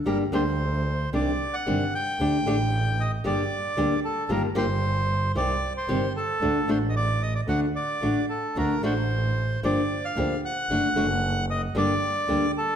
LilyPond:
<<
  \new Staff \with { instrumentName = "Bandoneon" } { \time 4/4 \key g \minor \tempo 4 = 113 bes'8 c''4. d''8. fis''8. g''8~ | g''4. ees''8 d''4. a'8 | bes'8 c''4. d''8. c''8. a'8~ | a'8 c''16. ees''32 d''8 ees''16 d''16 fis''8 d''4 a'8 |
bes'8 c''4. d''8. f''8. fis''8~ | fis''4. ees''8 d''4. a'8 | }
  \new Staff \with { instrumentName = "Nylon-string guitar" } { \time 4/4 \key g \minor <d g bes d' g'>8 <d g bes d' g'>8 r4 <c ees g d' g'>8 r8 <c ees g d' g'>8 r8 | <d a d' g'>8 <d a d' g'>8 r4 <d g bes d' g'>8 r8 <d g bes d' g'>8 r8 | <ees g bes f' g'>8 <ees g bes f' g'>8 r4 <c ees g c' g'>8 r8 <c ees g c' g'>8 r8 | <d a d' fis'>8 <d a d' fis'>8 r4 <d a d' fis'>8 r8 <d a d' fis'>8 r8 |
<d a d' fis'>8 <d a d' fis'>8 r4 <d f bes d' g'>8 r8 <d f bes d' g'>8 r8 | <d a d' fis'>8 <d a d' fis'>8 r4 <d g bes d' g'>8 r8 <d g bes d' g'>8 r8 | }
  \new Staff \with { instrumentName = "Double bass" } { \clef bass \time 4/4 \key g \minor g,,8 d,4. c,8 r8 g,,8 r8 | d,8 a,,4. g,,8 r8 d,8 r8 | g,,8 g,,4. c,8 r8 g,,8 r8 | d,8 a,,4. d,8 r8 a,,8 r8 |
d,8 a,,4. g,,8 r8 d,8 r8 | fis,,8 fis,,4. g,,8 r8 d,8 r8 | }
>>